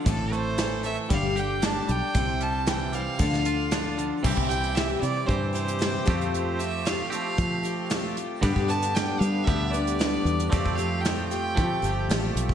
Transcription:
<<
  \new Staff \with { instrumentName = "Fiddle" } { \time 4/4 \key c \major \tempo 4 = 115 a'8 c''4 e''8 f''8 g''8 a''8 g''8~ | g''8 a''8 g''8 f''2 r8 | r8 g''8 e''8 d''8 c''8 c''4. | c''8 e''8 f''8 f''4. r4 |
r8 a''8 g''8 f''8 e''8 d''4. | d''8 f''8 g''8 g''4. r4 | }
  \new Staff \with { instrumentName = "Twelve-string acoustic guitar" } { \time 4/4 \key c \major <a, e a c' e' a'>4 <a c' e' a'>8 <a c' e' a'>8 <g, d g d' g' a'>8 <g d' g' a'>8 <g d' g' a'>4 | <c g c' e' c''>4 <g c' e' c''>8 <c' e' c''>8 <d f d' f' a'>8 <d' f' a'>8 <f d' f' a'>4 | <c g c' e' g'>8 <c' e' g'>8 <g c' e' g'>8 <c' e' g'>4 <c' e' g'>8 <g c' e' g'>8 <f a c' f' g'>8~ | <f a c' f' g'>8 <c' f' g'>8 <a c' f' g'>8 <c' f' g'>4 <c' f' g'>8 <a c' f' g'>4 |
<g, d g d' g' b'>8 <g d' g' b'>8 <g d' g' b'>8 <g d' g' b'>4 <g d' g' b'>8 <g d' g' b'>4 | <f a c' f' g'>8 <c' f' g'>8 <a c' f' g'>8 <c' f' g'>4 <c' f' g'>8 <a c' f' g'>4 | }
  \new Staff \with { instrumentName = "Clean electric guitar" } { \time 4/4 \key c \major a,8 a8 e8 a8 g8 g'8 d'8 g8 | c8 g8 e8 g8 d8 f'8 d'8 d8 | <c e g c' g'>2 <c e g c' g'>4. <f a c' g'>8~ | <f a c' g'>4. <f a c' g'>2 r8 |
<g, d g b d' g'>2 <g, d g b d' g'>2 | <f a c' g'>2 <f a c' g'>2 | }
  \new Staff \with { instrumentName = "Fingered electric bass" } { \clef bass \time 4/4 \key c \major a,,2 g,,4. b,,16 r16 | c,2 d,2 | c,16 c,4~ c,16 c8 g,4. f,8~ | f,4. r8 f2 |
g,16 g,4~ g,16 g8 d,4. e,8 | f,2 f8 g,,8 a,,8 b,,8 | }
  \new DrumStaff \with { instrumentName = "Drums" } \drummode { \time 4/4 <hh bd>8 hh8 <hh sn>8 hh8 <hh bd>8 hh8 <hh sn>8 hh8 | <hh bd>8 hh8 <hh sn>8 hh8 <hh bd>16 sn16 hh8 <hh sn>8 hh8 | <cymc bd>16 bd16 hh16 hh16 <hh sn>8 hh8 <hh bd>8 hh16 hh16 <hh sn>8 <hh bd>16 hh16 | hh8 hh8 <hh sn>8 hh8 <hh bd>8 hh8 <hh sn>8 hh8 |
<hh bd>16 bd16 hh16 hh16 <hh sn>8 hh8 <hh bd>8 hh16 hh16 <hh sn>8 hh16 hh16 | <hh bd>16 bd16 hh8 <hh sn>8 hh8 <hh bd>8 hh8 <hh sn>8 hh16 bd16 | }
>>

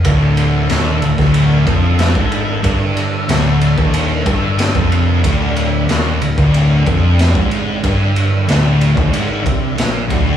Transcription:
<<
  \new Staff \with { instrumentName = "Tonewheel organ" } { \time 4/4 \key d \minor \tempo 4 = 92 a'1~ | a'1 | g1~ | g1 | }
  \new Staff \with { instrumentName = "Tonewheel organ" } { \time 4/4 \key d \minor <d e'>1~ | <d e'>1~ | <d e'>1~ | <d e'>1 | }
  \new Staff \with { instrumentName = "Distorted electric guitar" } { \clef bass \time 4/4 \key d \minor d,4 ees,8 d,16 d,8. f,8. gis,8. | g,4 d,8. ees,8. g,8. f,8. | d,4 ees,8 d,16 d,8. f,8. gis,8. | g,4 d,8. ees,16 gis,8 c8 bes,8 d,8 | }
  \new Staff \with { instrumentName = "Distorted electric guitar" } { \clef bass \time 4/4 \key d \minor d,4 ees,8 d,16 d,8. f,8. gis,8. | g,4 d,8. ees,8. g,8. f,8. | d,4 ees,8 d,16 d,8. f,8. gis,8. | g,4 d,8. ees,16 gis,8 c8 bes,8 d,8 | }
  \new Staff \with { instrumentName = "Picked electric bass" } { \clef bass \time 4/4 \key d \minor d,,4 ees,,8 d,,16 d,,8. f,,8. gis,,8. | g,,4 d,,8. ees,,8. g,,8. f,,8. | d,,4 ees,,8 d,,16 d,,8. f,,8. gis,,8. | g,,4 d,,8. ees,,16 gis,,8 c,8 bes,,8 d,,8 | }
  \new DrumStaff \with { instrumentName = "Drums" } \drummode { \time 4/4 <bd cymr>8 cymr8 <cymr sn>8 cymr16 <bd sn>16 cymr8 <bd cymr>8 <cymr sn>16 bd16 cymr8 | <bd cymr>8 cymr8 <cymr sn>8 cymr16 bd16 cymr8 <bd cymr>8 <cymr sn>16 bd16 cymr8 | <bd cymr>8 cymr8 <cymr sn>8 cymr16 bd16 cymr8 <bd cymr>8 <cymr sn>16 bd16 cymr8 | <bd cymr>8 cymr8 <cymr sn>8 cymr16 bd16 cymr8 <bd cymr>8 <cymr sn>8 <bd cymr>8 | }
>>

